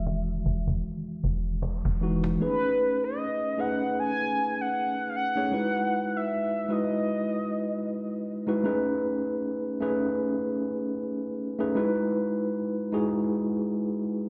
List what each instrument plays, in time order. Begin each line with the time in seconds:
Already playing: 808-style bass E1, tine electric piano D#3 E3 G#3 F#4, soft synth lead E5
0.06 cajon slap
0.45 808-style bass E1, cajon bass
0.67 cajon bass
0.83 cajon slap
1.24 808-style bass E1, cajon bass
1.62 cajon slap
1.85 808-style bass E1, cajon bass
2.01 tine electric piano E3 G#3 D#4 F#4, cajon slap
2.24 cajon slap
2.40 tine electric piano A3 B3 D#4 G#4 B4, soft synth lead B4
2.47 tine electric piano C#4
3.04 soft synth lead D#5
3.57 tine electric piano A3 C#4 D#4 G#4 B4, soft synth lead F#5
3.99 soft synth lead G#5
4.61 soft synth lead F#5
5.09 soft synth lead F5
5.16 soft synth lead F#5
5.35 tine electric piano A3 C#4 D#4 G#4 C#5
5.51 tine electric piano G#3 D#4 E4 F#4 B4
6.17 soft synth lead E5
6.68 tine electric piano G#3 D#4 E4 F#4 B4, soft synth lead D#5
8.47 tine electric piano G#3 D#4 E4 F#4 B4
8.64 tine electric piano A3 C#4 D#4 G#4 B4
9.80 tine electric piano A3 C#4 D#4 G#4 B4
11.59 tine electric piano A3 C#4 D#4 G#4 B4
11.75 tine electric piano G#3 D#4 E4 F#4 B4
12.92 tine electric piano G#3 D#4 E4 F#4 G#4